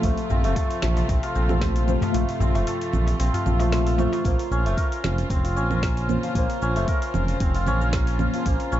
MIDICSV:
0, 0, Header, 1, 7, 480
1, 0, Start_track
1, 0, Key_signature, -5, "minor"
1, 0, Tempo, 526316
1, 34, Time_signature, 4, 2, 24, 8
1, 8025, End_track
2, 0, Start_track
2, 0, Title_t, "Synth stab"
2, 0, Program_c, 0, 62
2, 0, Control_c, 0, 64, 127
2, 0, Note_on_c, 0, 57, 96
2, 0, Note_on_c, 0, 65, 91
2, 0, Note_on_c, 0, 72, 102
2, 14, Note_off_c, 0, 57, 0
2, 14, Note_on_c, 0, 57, 107
2, 31, Note_off_c, 0, 65, 0
2, 31, Note_on_c, 0, 65, 93
2, 50, Note_off_c, 0, 72, 0
2, 50, Note_on_c, 0, 72, 116
2, 1328, Note_off_c, 0, 57, 0
2, 1336, Note_off_c, 0, 65, 0
2, 1346, Note_off_c, 0, 72, 0
2, 1355, Note_on_c, 0, 57, 93
2, 1366, Note_on_c, 0, 65, 90
2, 1376, Note_on_c, 0, 72, 106
2, 1443, Note_off_c, 0, 57, 0
2, 1448, Note_off_c, 0, 65, 0
2, 1453, Note_off_c, 0, 72, 0
2, 1466, Note_on_c, 0, 57, 108
2, 1475, Note_on_c, 0, 65, 95
2, 1484, Note_on_c, 0, 72, 109
2, 1684, Note_off_c, 0, 57, 0
2, 1688, Note_off_c, 0, 65, 0
2, 1692, Note_off_c, 0, 72, 0
2, 1706, Note_on_c, 0, 57, 94
2, 1714, Note_on_c, 0, 65, 85
2, 1724, Note_on_c, 0, 72, 108
2, 1923, Note_off_c, 0, 57, 0
2, 1927, Note_off_c, 0, 65, 0
2, 1932, Note_off_c, 0, 72, 0
2, 1934, Note_on_c, 0, 57, 105
2, 1952, Note_on_c, 0, 65, 98
2, 1970, Note_on_c, 0, 72, 108
2, 3248, Note_off_c, 0, 57, 0
2, 3257, Note_off_c, 0, 65, 0
2, 3266, Note_off_c, 0, 72, 0
2, 3275, Note_on_c, 0, 57, 94
2, 3284, Note_on_c, 0, 65, 86
2, 3292, Note_on_c, 0, 72, 108
2, 3363, Note_off_c, 0, 57, 0
2, 3367, Note_off_c, 0, 65, 0
2, 3371, Note_off_c, 0, 72, 0
2, 3386, Note_on_c, 0, 57, 98
2, 3395, Note_on_c, 0, 65, 87
2, 3406, Note_on_c, 0, 72, 105
2, 3603, Note_off_c, 0, 57, 0
2, 3608, Note_off_c, 0, 65, 0
2, 3613, Note_off_c, 0, 72, 0
2, 3626, Note_on_c, 0, 57, 95
2, 3635, Note_on_c, 0, 65, 92
2, 3645, Note_on_c, 0, 72, 109
2, 3843, Note_off_c, 0, 57, 0
2, 3848, Note_off_c, 0, 65, 0
2, 3853, Note_off_c, 0, 72, 0
2, 3884, Control_c, 0, 64, 0
2, 3894, Note_on_c, 0, 72, 112
2, 4063, Control_c, 0, 64, 127
2, 5188, Note_off_c, 0, 72, 0
2, 5547, Note_on_c, 0, 58, 91
2, 5557, Note_on_c, 0, 61, 76
2, 5566, Note_on_c, 0, 72, 104
2, 5764, Note_off_c, 0, 58, 0
2, 5769, Note_off_c, 0, 61, 0
2, 5773, Note_off_c, 0, 72, 0
2, 5818, Note_on_c, 0, 72, 113
2, 7110, Note_off_c, 0, 72, 0
2, 7470, Note_on_c, 0, 58, 87
2, 7479, Note_on_c, 0, 61, 80
2, 7486, Note_on_c, 0, 72, 96
2, 7685, Note_off_c, 0, 58, 0
2, 7690, Note_off_c, 0, 61, 0
2, 7693, Note_off_c, 0, 72, 0
2, 7734, Note_on_c, 0, 72, 112
2, 8025, Note_off_c, 0, 72, 0
2, 8025, End_track
3, 0, Start_track
3, 0, Title_t, "Santur"
3, 0, Program_c, 1, 15
3, 0, Note_on_c, 1, 53, 77
3, 0, Note_on_c, 1, 60, 108
3, 0, Note_on_c, 1, 65, 81
3, 0, Note_on_c, 1, 69, 79
3, 35, Note_on_c, 1, 57, 83
3, 273, Note_off_c, 1, 60, 0
3, 276, Note_on_c, 1, 60, 104
3, 401, Note_off_c, 1, 57, 0
3, 404, Note_on_c, 1, 57, 107
3, 511, Note_off_c, 1, 69, 0
3, 515, Note_on_c, 1, 69, 94
3, 990, Note_off_c, 1, 60, 0
3, 994, Note_on_c, 1, 60, 99
3, 1119, Note_off_c, 1, 65, 0
3, 1123, Note_on_c, 1, 65, 83
3, 1231, Note_off_c, 1, 60, 0
3, 1235, Note_on_c, 1, 60, 100
3, 1362, Note_off_c, 1, 69, 0
3, 1366, Note_on_c, 1, 69, 82
3, 1837, Note_off_c, 1, 53, 0
3, 1848, Note_on_c, 1, 53, 75
3, 1951, Note_off_c, 1, 57, 0
3, 1954, Note_on_c, 1, 57, 82
3, 2190, Note_off_c, 1, 60, 0
3, 2194, Note_on_c, 1, 60, 101
3, 2320, Note_off_c, 1, 57, 0
3, 2324, Note_on_c, 1, 57, 100
3, 2434, Note_off_c, 1, 69, 0
3, 2438, Note_on_c, 1, 69, 98
3, 2909, Note_off_c, 1, 60, 0
3, 2913, Note_on_c, 1, 60, 101
3, 3042, Note_off_c, 1, 65, 0
3, 3045, Note_on_c, 1, 65, 78
3, 3145, Note_off_c, 1, 53, 0
3, 3156, Note_on_c, 1, 53, 77
3, 3284, Note_off_c, 1, 57, 0
3, 3287, Note_on_c, 1, 57, 75
3, 3523, Note_off_c, 1, 69, 0
3, 3527, Note_on_c, 1, 69, 74
3, 3633, Note_off_c, 1, 57, 0
3, 3637, Note_on_c, 1, 57, 99
3, 3764, Note_off_c, 1, 57, 0
3, 3768, Note_on_c, 1, 57, 79
3, 3878, Note_on_c, 1, 58, 79
3, 3919, Note_off_c, 1, 53, 0
3, 3933, Note_off_c, 1, 57, 0
3, 3933, Note_off_c, 1, 69, 0
3, 4118, Note_on_c, 1, 61, 100
3, 4173, Note_off_c, 1, 60, 0
3, 4246, Note_on_c, 1, 57, 104
3, 4301, Note_off_c, 1, 58, 0
3, 4353, Note_on_c, 1, 70, 90
3, 4408, Note_off_c, 1, 57, 0
3, 4834, Note_on_c, 1, 60, 103
3, 4888, Note_off_c, 1, 61, 0
3, 4959, Note_off_c, 1, 65, 0
3, 4963, Note_on_c, 1, 65, 75
3, 5074, Note_on_c, 1, 61, 101
3, 5128, Note_off_c, 1, 60, 0
3, 5200, Note_off_c, 1, 70, 0
3, 5203, Note_on_c, 1, 70, 80
3, 5686, Note_on_c, 1, 53, 79
3, 5795, Note_on_c, 1, 58, 82
3, 6034, Note_off_c, 1, 61, 0
3, 6038, Note_on_c, 1, 61, 100
3, 6165, Note_on_c, 1, 57, 104
3, 6219, Note_off_c, 1, 58, 0
3, 6219, Note_off_c, 1, 70, 0
3, 6277, Note_on_c, 1, 70, 94
3, 6332, Note_off_c, 1, 57, 0
3, 6757, Note_on_c, 1, 60, 104
3, 6811, Note_off_c, 1, 61, 0
3, 6885, Note_off_c, 1, 65, 0
3, 6889, Note_on_c, 1, 65, 82
3, 6996, Note_on_c, 1, 61, 108
3, 7051, Note_off_c, 1, 60, 0
3, 7121, Note_off_c, 1, 70, 0
3, 7124, Note_on_c, 1, 70, 82
3, 7595, Note_off_c, 1, 53, 0
3, 7606, Note_on_c, 1, 53, 77
3, 7711, Note_on_c, 1, 58, 85
3, 7949, Note_off_c, 1, 61, 0
3, 7952, Note_on_c, 1, 61, 102
3, 8025, Note_off_c, 1, 53, 0
3, 8025, Note_off_c, 1, 58, 0
3, 8025, Note_off_c, 1, 61, 0
3, 8025, Note_off_c, 1, 65, 0
3, 8025, Note_off_c, 1, 70, 0
3, 8025, End_track
4, 0, Start_track
4, 0, Title_t, "String section"
4, 0, Program_c, 2, 48
4, 0, Note_on_c, 2, 48, 83
4, 0, Note_on_c, 2, 53, 74
4, 0, Note_on_c, 2, 57, 75
4, 0, Note_on_c, 2, 65, 91
4, 3836, Note_off_c, 2, 53, 0
4, 3836, Note_off_c, 2, 57, 0
4, 3837, Note_off_c, 2, 65, 0
4, 3838, Note_off_c, 2, 48, 0
4, 3869, Note_on_c, 2, 65, 85
4, 3871, Note_on_c, 2, 72, 73
4, 3873, Note_on_c, 2, 49, 79
4, 8025, Note_off_c, 2, 49, 0
4, 8025, Note_off_c, 2, 65, 0
4, 8025, Note_off_c, 2, 72, 0
4, 8025, End_track
5, 0, Start_track
5, 0, Title_t, "Analog synth bass"
5, 0, Program_c, 3, 38
5, 31, Note_on_c, 3, 34, 103
5, 130, Note_off_c, 3, 34, 0
5, 275, Note_on_c, 3, 34, 94
5, 405, Note_on_c, 3, 29, 92
5, 418, Note_off_c, 3, 34, 0
5, 487, Note_off_c, 3, 29, 0
5, 754, Note_on_c, 3, 34, 86
5, 940, Note_off_c, 3, 34, 0
5, 993, Note_on_c, 3, 34, 87
5, 1091, Note_off_c, 3, 34, 0
5, 1236, Note_on_c, 3, 34, 78
5, 1793, Note_off_c, 3, 34, 0
5, 1954, Note_on_c, 3, 34, 103
5, 2051, Note_off_c, 3, 34, 0
5, 2191, Note_on_c, 3, 34, 93
5, 2324, Note_on_c, 3, 29, 88
5, 2338, Note_off_c, 3, 34, 0
5, 2407, Note_off_c, 3, 29, 0
5, 2676, Note_on_c, 3, 34, 82
5, 2860, Note_off_c, 3, 34, 0
5, 2916, Note_on_c, 3, 34, 91
5, 3013, Note_off_c, 3, 34, 0
5, 3156, Note_on_c, 3, 34, 80
5, 3713, Note_off_c, 3, 34, 0
5, 3873, Note_on_c, 3, 34, 97
5, 3971, Note_off_c, 3, 34, 0
5, 4114, Note_on_c, 3, 34, 92
5, 4248, Note_on_c, 3, 29, 89
5, 4262, Note_off_c, 3, 34, 0
5, 4329, Note_off_c, 3, 29, 0
5, 4599, Note_on_c, 3, 29, 83
5, 4782, Note_off_c, 3, 29, 0
5, 4834, Note_on_c, 3, 29, 89
5, 5075, Note_on_c, 3, 34, 78
5, 5089, Note_off_c, 3, 29, 0
5, 5633, Note_off_c, 3, 34, 0
5, 5792, Note_on_c, 3, 34, 98
5, 5891, Note_off_c, 3, 34, 0
5, 6037, Note_on_c, 3, 34, 88
5, 6166, Note_on_c, 3, 29, 94
5, 6180, Note_off_c, 3, 34, 0
5, 6247, Note_off_c, 3, 29, 0
5, 6516, Note_on_c, 3, 29, 84
5, 6700, Note_off_c, 3, 29, 0
5, 6753, Note_on_c, 3, 29, 90
5, 6995, Note_on_c, 3, 34, 76
5, 7009, Note_off_c, 3, 29, 0
5, 7553, Note_off_c, 3, 34, 0
5, 7715, Note_on_c, 3, 34, 100
5, 7812, Note_off_c, 3, 34, 0
5, 7953, Note_on_c, 3, 34, 95
5, 8025, Note_off_c, 3, 34, 0
5, 8025, End_track
6, 0, Start_track
6, 0, Title_t, "Darbuka"
6, 35, Note_on_c, 9, 62, 61
6, 126, Note_off_c, 9, 62, 0
6, 275, Note_on_c, 9, 64, 81
6, 367, Note_off_c, 9, 64, 0
6, 753, Note_on_c, 9, 62, 53
6, 844, Note_off_c, 9, 62, 0
6, 885, Note_on_c, 9, 62, 72
6, 976, Note_off_c, 9, 62, 0
6, 995, Note_on_c, 9, 63, 64
6, 1086, Note_off_c, 9, 63, 0
6, 1123, Note_on_c, 9, 63, 58
6, 1214, Note_off_c, 9, 63, 0
6, 1840, Note_on_c, 9, 64, 88
6, 1849, Note_on_c, 9, 63, 66
6, 1931, Note_off_c, 9, 64, 0
6, 1940, Note_off_c, 9, 63, 0
6, 1957, Note_on_c, 9, 62, 67
6, 2049, Note_off_c, 9, 62, 0
6, 2191, Note_on_c, 9, 64, 95
6, 2282, Note_off_c, 9, 64, 0
6, 2326, Note_on_c, 9, 63, 60
6, 2417, Note_off_c, 9, 63, 0
6, 2669, Note_on_c, 9, 62, 57
6, 2760, Note_off_c, 9, 62, 0
6, 2797, Note_on_c, 9, 62, 65
6, 2803, Note_on_c, 9, 63, 60
6, 2888, Note_off_c, 9, 62, 0
6, 2895, Note_off_c, 9, 63, 0
6, 3043, Note_on_c, 9, 64, 75
6, 3135, Note_off_c, 9, 64, 0
6, 3152, Note_on_c, 9, 62, 35
6, 3244, Note_off_c, 9, 62, 0
6, 3279, Note_on_c, 9, 63, 70
6, 3370, Note_off_c, 9, 63, 0
6, 3523, Note_on_c, 9, 63, 35
6, 3614, Note_off_c, 9, 63, 0
6, 3632, Note_on_c, 9, 62, 66
6, 3723, Note_off_c, 9, 62, 0
6, 3763, Note_on_c, 9, 63, 71
6, 3855, Note_off_c, 9, 63, 0
6, 8025, End_track
7, 0, Start_track
7, 0, Title_t, "Drums"
7, 31, Note_on_c, 9, 46, 70
7, 32, Note_on_c, 9, 36, 101
7, 35, Note_on_c, 9, 69, 42
7, 123, Note_off_c, 9, 46, 0
7, 124, Note_off_c, 9, 36, 0
7, 126, Note_off_c, 9, 69, 0
7, 160, Note_on_c, 9, 46, 45
7, 251, Note_off_c, 9, 46, 0
7, 275, Note_on_c, 9, 69, 74
7, 366, Note_off_c, 9, 69, 0
7, 403, Note_on_c, 9, 46, 33
7, 406, Note_on_c, 9, 69, 33
7, 494, Note_off_c, 9, 46, 0
7, 497, Note_off_c, 9, 69, 0
7, 512, Note_on_c, 9, 36, 98
7, 512, Note_on_c, 9, 46, 70
7, 516, Note_on_c, 9, 69, 40
7, 604, Note_off_c, 9, 36, 0
7, 604, Note_off_c, 9, 46, 0
7, 607, Note_off_c, 9, 69, 0
7, 643, Note_on_c, 9, 46, 44
7, 734, Note_off_c, 9, 46, 0
7, 751, Note_on_c, 9, 38, 85
7, 751, Note_on_c, 9, 64, 96
7, 754, Note_on_c, 9, 69, 79
7, 842, Note_off_c, 9, 38, 0
7, 842, Note_off_c, 9, 64, 0
7, 845, Note_off_c, 9, 69, 0
7, 882, Note_on_c, 9, 46, 33
7, 886, Note_on_c, 9, 69, 32
7, 974, Note_off_c, 9, 46, 0
7, 977, Note_off_c, 9, 69, 0
7, 993, Note_on_c, 9, 36, 102
7, 995, Note_on_c, 9, 46, 72
7, 998, Note_on_c, 9, 69, 47
7, 1084, Note_off_c, 9, 36, 0
7, 1086, Note_off_c, 9, 46, 0
7, 1089, Note_off_c, 9, 69, 0
7, 1122, Note_on_c, 9, 46, 45
7, 1214, Note_off_c, 9, 46, 0
7, 1236, Note_on_c, 9, 69, 76
7, 1328, Note_off_c, 9, 69, 0
7, 1363, Note_on_c, 9, 64, 87
7, 1366, Note_on_c, 9, 69, 34
7, 1454, Note_off_c, 9, 64, 0
7, 1457, Note_off_c, 9, 69, 0
7, 1472, Note_on_c, 9, 36, 108
7, 1473, Note_on_c, 9, 38, 79
7, 1473, Note_on_c, 9, 46, 66
7, 1476, Note_on_c, 9, 69, 42
7, 1563, Note_off_c, 9, 36, 0
7, 1564, Note_off_c, 9, 38, 0
7, 1564, Note_off_c, 9, 46, 0
7, 1567, Note_off_c, 9, 69, 0
7, 1603, Note_on_c, 9, 46, 48
7, 1694, Note_off_c, 9, 46, 0
7, 1715, Note_on_c, 9, 64, 88
7, 1718, Note_on_c, 9, 69, 78
7, 1806, Note_off_c, 9, 64, 0
7, 1809, Note_off_c, 9, 69, 0
7, 1844, Note_on_c, 9, 46, 31
7, 1848, Note_on_c, 9, 69, 34
7, 1936, Note_off_c, 9, 46, 0
7, 1939, Note_off_c, 9, 69, 0
7, 1956, Note_on_c, 9, 46, 70
7, 1959, Note_on_c, 9, 69, 45
7, 2047, Note_off_c, 9, 46, 0
7, 2050, Note_off_c, 9, 69, 0
7, 2086, Note_on_c, 9, 46, 48
7, 2089, Note_on_c, 9, 69, 31
7, 2177, Note_off_c, 9, 46, 0
7, 2180, Note_off_c, 9, 69, 0
7, 2199, Note_on_c, 9, 69, 79
7, 2290, Note_off_c, 9, 69, 0
7, 2329, Note_on_c, 9, 46, 34
7, 2332, Note_on_c, 9, 69, 31
7, 2420, Note_off_c, 9, 46, 0
7, 2423, Note_off_c, 9, 69, 0
7, 2436, Note_on_c, 9, 46, 66
7, 2440, Note_on_c, 9, 69, 45
7, 2528, Note_off_c, 9, 46, 0
7, 2531, Note_off_c, 9, 69, 0
7, 2567, Note_on_c, 9, 46, 47
7, 2570, Note_on_c, 9, 69, 30
7, 2658, Note_off_c, 9, 46, 0
7, 2661, Note_off_c, 9, 69, 0
7, 2676, Note_on_c, 9, 64, 84
7, 2680, Note_on_c, 9, 69, 83
7, 2768, Note_off_c, 9, 64, 0
7, 2771, Note_off_c, 9, 69, 0
7, 2805, Note_on_c, 9, 46, 34
7, 2809, Note_on_c, 9, 69, 31
7, 2897, Note_off_c, 9, 46, 0
7, 2900, Note_off_c, 9, 69, 0
7, 2916, Note_on_c, 9, 46, 71
7, 2920, Note_on_c, 9, 69, 44
7, 3008, Note_off_c, 9, 46, 0
7, 3011, Note_off_c, 9, 69, 0
7, 3049, Note_on_c, 9, 46, 49
7, 3052, Note_on_c, 9, 69, 31
7, 3140, Note_off_c, 9, 46, 0
7, 3143, Note_off_c, 9, 69, 0
7, 3156, Note_on_c, 9, 64, 85
7, 3160, Note_on_c, 9, 69, 76
7, 3248, Note_off_c, 9, 64, 0
7, 3251, Note_off_c, 9, 69, 0
7, 3285, Note_on_c, 9, 46, 34
7, 3288, Note_on_c, 9, 69, 33
7, 3376, Note_off_c, 9, 46, 0
7, 3380, Note_off_c, 9, 69, 0
7, 3397, Note_on_c, 9, 38, 78
7, 3397, Note_on_c, 9, 46, 70
7, 3400, Note_on_c, 9, 69, 45
7, 3488, Note_off_c, 9, 38, 0
7, 3488, Note_off_c, 9, 46, 0
7, 3491, Note_off_c, 9, 69, 0
7, 3526, Note_on_c, 9, 46, 44
7, 3617, Note_off_c, 9, 46, 0
7, 3637, Note_on_c, 9, 64, 86
7, 3641, Note_on_c, 9, 69, 78
7, 3729, Note_off_c, 9, 64, 0
7, 3732, Note_off_c, 9, 69, 0
7, 3768, Note_on_c, 9, 46, 34
7, 3772, Note_on_c, 9, 69, 34
7, 3860, Note_off_c, 9, 46, 0
7, 3863, Note_off_c, 9, 69, 0
7, 3872, Note_on_c, 9, 36, 101
7, 3877, Note_on_c, 9, 46, 73
7, 3881, Note_on_c, 9, 69, 43
7, 3964, Note_off_c, 9, 36, 0
7, 3969, Note_off_c, 9, 46, 0
7, 3972, Note_off_c, 9, 69, 0
7, 4007, Note_on_c, 9, 46, 48
7, 4099, Note_off_c, 9, 46, 0
7, 4121, Note_on_c, 9, 69, 73
7, 4212, Note_off_c, 9, 69, 0
7, 4251, Note_on_c, 9, 46, 33
7, 4254, Note_on_c, 9, 69, 33
7, 4342, Note_off_c, 9, 46, 0
7, 4345, Note_off_c, 9, 69, 0
7, 4353, Note_on_c, 9, 36, 101
7, 4357, Note_on_c, 9, 46, 66
7, 4361, Note_on_c, 9, 69, 43
7, 4444, Note_off_c, 9, 36, 0
7, 4449, Note_off_c, 9, 46, 0
7, 4452, Note_off_c, 9, 69, 0
7, 4489, Note_on_c, 9, 46, 45
7, 4580, Note_off_c, 9, 46, 0
7, 4597, Note_on_c, 9, 38, 88
7, 4597, Note_on_c, 9, 64, 83
7, 4600, Note_on_c, 9, 69, 86
7, 4688, Note_off_c, 9, 38, 0
7, 4688, Note_off_c, 9, 64, 0
7, 4691, Note_off_c, 9, 69, 0
7, 4727, Note_on_c, 9, 46, 33
7, 4730, Note_on_c, 9, 69, 35
7, 4818, Note_off_c, 9, 46, 0
7, 4821, Note_off_c, 9, 69, 0
7, 4833, Note_on_c, 9, 36, 111
7, 4837, Note_on_c, 9, 46, 70
7, 4840, Note_on_c, 9, 69, 44
7, 4924, Note_off_c, 9, 36, 0
7, 4928, Note_off_c, 9, 46, 0
7, 4931, Note_off_c, 9, 69, 0
7, 4968, Note_on_c, 9, 46, 47
7, 5059, Note_off_c, 9, 46, 0
7, 5079, Note_on_c, 9, 69, 78
7, 5170, Note_off_c, 9, 69, 0
7, 5205, Note_on_c, 9, 64, 80
7, 5208, Note_on_c, 9, 69, 36
7, 5296, Note_off_c, 9, 64, 0
7, 5299, Note_off_c, 9, 69, 0
7, 5313, Note_on_c, 9, 36, 107
7, 5315, Note_on_c, 9, 38, 80
7, 5315, Note_on_c, 9, 46, 69
7, 5319, Note_on_c, 9, 69, 44
7, 5405, Note_off_c, 9, 36, 0
7, 5407, Note_off_c, 9, 38, 0
7, 5407, Note_off_c, 9, 46, 0
7, 5410, Note_off_c, 9, 69, 0
7, 5446, Note_on_c, 9, 46, 45
7, 5537, Note_off_c, 9, 46, 0
7, 5555, Note_on_c, 9, 64, 80
7, 5559, Note_on_c, 9, 69, 78
7, 5646, Note_off_c, 9, 64, 0
7, 5650, Note_off_c, 9, 69, 0
7, 5684, Note_on_c, 9, 46, 33
7, 5688, Note_on_c, 9, 69, 35
7, 5776, Note_off_c, 9, 46, 0
7, 5779, Note_off_c, 9, 69, 0
7, 5793, Note_on_c, 9, 36, 106
7, 5795, Note_on_c, 9, 46, 69
7, 5798, Note_on_c, 9, 69, 47
7, 5884, Note_off_c, 9, 36, 0
7, 5886, Note_off_c, 9, 46, 0
7, 5889, Note_off_c, 9, 69, 0
7, 5925, Note_on_c, 9, 46, 46
7, 6017, Note_off_c, 9, 46, 0
7, 6037, Note_on_c, 9, 69, 81
7, 6128, Note_off_c, 9, 69, 0
7, 6165, Note_on_c, 9, 46, 31
7, 6169, Note_on_c, 9, 69, 34
7, 6257, Note_off_c, 9, 46, 0
7, 6260, Note_off_c, 9, 69, 0
7, 6273, Note_on_c, 9, 36, 111
7, 6273, Note_on_c, 9, 46, 64
7, 6277, Note_on_c, 9, 69, 45
7, 6364, Note_off_c, 9, 46, 0
7, 6365, Note_off_c, 9, 36, 0
7, 6368, Note_off_c, 9, 69, 0
7, 6403, Note_on_c, 9, 46, 45
7, 6494, Note_off_c, 9, 46, 0
7, 6512, Note_on_c, 9, 64, 86
7, 6515, Note_on_c, 9, 69, 91
7, 6603, Note_off_c, 9, 64, 0
7, 6606, Note_off_c, 9, 69, 0
7, 6642, Note_on_c, 9, 46, 33
7, 6646, Note_on_c, 9, 69, 37
7, 6733, Note_off_c, 9, 46, 0
7, 6737, Note_off_c, 9, 69, 0
7, 6752, Note_on_c, 9, 46, 70
7, 6754, Note_on_c, 9, 36, 114
7, 6755, Note_on_c, 9, 69, 45
7, 6843, Note_off_c, 9, 46, 0
7, 6845, Note_off_c, 9, 36, 0
7, 6847, Note_off_c, 9, 69, 0
7, 6881, Note_on_c, 9, 46, 49
7, 6972, Note_off_c, 9, 46, 0
7, 6991, Note_on_c, 9, 64, 74
7, 6995, Note_on_c, 9, 69, 85
7, 7083, Note_off_c, 9, 64, 0
7, 7086, Note_off_c, 9, 69, 0
7, 7125, Note_on_c, 9, 69, 35
7, 7216, Note_off_c, 9, 69, 0
7, 7232, Note_on_c, 9, 38, 82
7, 7232, Note_on_c, 9, 46, 66
7, 7234, Note_on_c, 9, 36, 115
7, 7235, Note_on_c, 9, 69, 47
7, 7323, Note_off_c, 9, 38, 0
7, 7323, Note_off_c, 9, 46, 0
7, 7325, Note_off_c, 9, 36, 0
7, 7326, Note_off_c, 9, 69, 0
7, 7361, Note_on_c, 9, 46, 46
7, 7452, Note_off_c, 9, 46, 0
7, 7471, Note_on_c, 9, 64, 78
7, 7474, Note_on_c, 9, 69, 84
7, 7562, Note_off_c, 9, 64, 0
7, 7566, Note_off_c, 9, 69, 0
7, 7603, Note_on_c, 9, 46, 34
7, 7606, Note_on_c, 9, 69, 36
7, 7694, Note_off_c, 9, 46, 0
7, 7698, Note_off_c, 9, 69, 0
7, 7714, Note_on_c, 9, 36, 106
7, 7714, Note_on_c, 9, 46, 71
7, 7717, Note_on_c, 9, 69, 47
7, 7805, Note_off_c, 9, 36, 0
7, 7805, Note_off_c, 9, 46, 0
7, 7808, Note_off_c, 9, 69, 0
7, 7842, Note_on_c, 9, 46, 45
7, 7933, Note_off_c, 9, 46, 0
7, 7956, Note_on_c, 9, 69, 81
7, 8025, Note_off_c, 9, 69, 0
7, 8025, End_track
0, 0, End_of_file